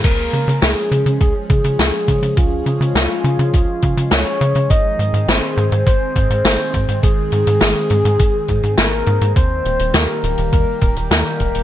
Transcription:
<<
  \new Staff \with { instrumentName = "Soft synth lead" } { \time 4/4 \key des \lydian \tempo 4 = 103 bes'4 aes'4 aes'8 aes'4. | f'2. des''4 | ees''4 c''4 c''8 c''4. | aes'2. bes'4 |
c''4 bes'4 bes'8 bes'8 bes'4 | }
  \new Staff \with { instrumentName = "Analog synth pad" } { \time 4/4 \key des \lydian << { <f des' aes'>1~ | <f des' aes'>1 | <ees c' aes'>1~ | <ees c' aes'>1 |
<ees bes g'>1 | } \\ { aes1~ | aes1~ | aes1~ | aes1 |
g1 | } >> }
  \new Staff \with { instrumentName = "Analog synth bass" } { \clef bass \time 4/4 \key des \lydian des,8 des16 des16 des,16 r16 des16 des16 des,16 r16 des16 des16 des,16 r16 des16 des16 | des,8 des16 des16 des,16 r16 des16 des16 des,16 r16 des16 des16 des,16 r16 des16 des16 | aes,,8 aes,16 aes,16 aes,,16 r16 aes,16 aes,16 aes,,16 r16 aes,16 aes,16 aes,,16 r16 aes,16 aes,16 | aes,,8 aes,16 aes,16 aes,,16 r16 aes,16 aes,16 aes,,16 r16 aes,16 aes,16 aes,,8 aes,16 aes,16 |
ees,8 ees,,16 ees,,16 ees,16 r16 ees,,16 ees,,16 ees,16 r16 ees,,16 ees,,16 ees,16 r16 ees,,16 ees,,16 | }
  \new DrumStaff \with { instrumentName = "Drums" } \drummode { \time 4/4 <cymc hh bd>8 hh16 hh16 <hh sn>8 hh16 hh16 <hh bd>8 <hh bd>16 hh16 <hh sn>8 <hh bd>16 hh16 | <hh bd>8 hh16 hh16 <hh sn>8 hh16 hh16 <hh bd>8 <hh bd>16 hh16 <hh sn>8 hh16 hh16 | <hh bd>8 hh16 hh16 <hh sn>8 hh16 hh16 <hh bd>8 <hh bd>16 hh16 <hh sn>8 <hh bd>16 hh16 | <hh bd>8 hh16 hh16 <hh sn>8 hh16 hh16 <hh bd>8 <hh bd>16 hh16 <hh sn>8 hh16 hh16 |
<hh bd>8 hh16 hh16 <hh sn>8 hh16 hh16 <hh bd>8 <hh bd>16 hh16 <hh sn>8 <hh bd>16 hh16 | }
>>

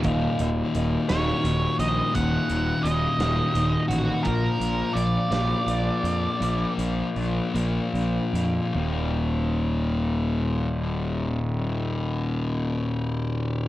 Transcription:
<<
  \new Staff \with { instrumentName = "Lead electric guitar" } { \time 6/8 \key ees \minor \tempo 4. = 54 r4. des''4 ees''8 | ges''4 ees''4. ges'8 | bes'4 d''2~ | d''8 r2 r8 |
r2. | r2. | }
  \new Staff \with { instrumentName = "Clean electric guitar" } { \time 6/8 \key ees \minor <ees ges bes ees'>8 <ees ges bes ees'>8 <ees ges bes ees'>8 <ees ges bes ees'>8 <ees ges bes ees'>8 <ees ges bes ees'>8 | <ees ges bes ees'>8 <ees ges bes ees'>8 <ees ges bes ees'>8 <ees ges bes ees'>8 <ees ges bes ees'>8 <ees ges bes ees'>8 | <f bes d' f'>8 <f bes d' f'>8 <f bes d' f'>8 <f bes d' f'>8 <f bes d' f'>8 <f bes d' f'>8 | <f bes d' f'>8 <f bes d' f'>8 <f bes d' f'>8 <f bes d' f'>8 <f bes d' f'>8 <f bes d' f'>8 |
<ees, bes, ees ges bes ees'>2.~ | <ees, bes, ees ges bes ees'>2. | }
  \new Staff \with { instrumentName = "Distorted electric guitar" } { \clef bass \time 6/8 \key ees \minor <ees, bes, ees>4. <ees, bes, ees>4. | <ees, bes, ees>4. <ees, bes, ees>4. | <bes, f bes>4. <bes, f bes>4. | <bes, f bes>4. <bes, f bes>4. |
<ees, bes, ees>2.~ | <ees, bes, ees>2. | }
  \new Staff \with { instrumentName = "Fingered electric bass" } { \clef bass \time 6/8 \key ees \minor ees,,8 ees,,8 ees,,8 ees,,8 ees,,8 bes,,8 | ees,,8 ees,,8 ees,,8 ees,,8 ees,,8 a,,8 | bes,,8 bes,,8 bes,,8 bes,,8 bes,,8 f,8 | bes,,8 bes,,8 bes,,8 bes,,8 bes,,8 f,8 |
ees,,2.~ | ees,,2. | }
  \new DrumStaff \with { instrumentName = "Drums" } \drummode { \time 6/8 <hh bd>8 hh8 hh8 <hh sn>8 hh8 hh8 | <hh bd>8 hh8 hh8 <hh sn>8 hh8 hh8 | <hh bd>8 hh8 hh8 <hh sn>8 hh8 hh8 | hh8 hh8 hh8 hh8 hh8 hh8 |
r4. r4. | r4. r4. | }
>>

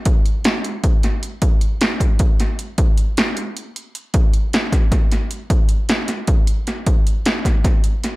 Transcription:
\new DrumStaff \with { instrumentName = "Drums" } \drummode { \time 7/8 \tempo 4 = 154 <hh bd>8 hh8 <hh sn>8 hh8 <hh bd>8 <hh sn>8 hh8 | <hh bd>8 hh8 <hh sn>8 <hh bd>8 <hh bd>8 <hh sn>8 hh8 | <hh bd>8 hh8 <hh sn>8 hh8 hh8 hh8 hh8 | <hh bd>8 hh8 <hh sn>8 <hh bd sn>8 <hh bd sn>8 <hh sn>8 hh8 |
<hh bd>8 hh8 <hh sn>8 <hh sn>8 <hh bd>8 hh8 <hh sn>8 | <hh bd>8 hh8 <hh sn>8 <hh bd sn>8 <hh bd sn>8 hh8 <hh sn>8 | }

